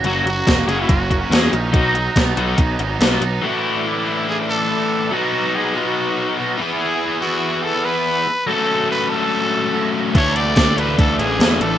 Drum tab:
HH |xxxxxxxx|xxxxxxxx|--------|--------|
SD |--o---o-|--o---o-|--------|--------|
BD |--o-oo--|o-o-o---|--------|--------|

HH |--------|--------|xxxxxxxx|
SD |--------|--------|--o---o-|
BD |--------|--------|o-o-o---|